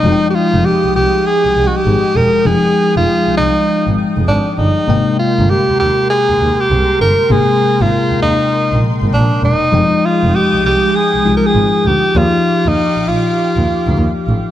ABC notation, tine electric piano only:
X:1
M:4/4
L:1/8
Q:"Swing 16ths" 1/4=99
K:Fdor
V:1 name="Tine electric piano"
[F,A,E_G=g]8 | [F,A,Eg]8 | [C,A,B,g]8 | [C,A,B,B]8 |
[F,A,Eg]4- [F,A,Eg] [F,A,EF]3 | [F,EGd]8 |]